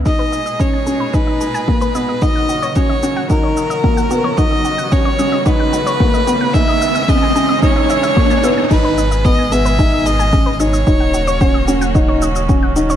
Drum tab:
CC |----------------|----------------|----------------|----------------|
SH |x-xxx-x-x-xx-xx-|x-xxx-x-x-xx-xx-|x-xxx-x-x-xx-xx-|x-xxx-x-x-xx-xx-|
BD |o---o---o---o---|o---o---o---o---|o---o---o---o---|o---o---o---o---|

CC |x---------------|----------------|
SH |x-xxx-xxx-xxx-xx|x-xxx-xxx-xxx-xx|
BD |o---o---o---o---|o---o---o---o---|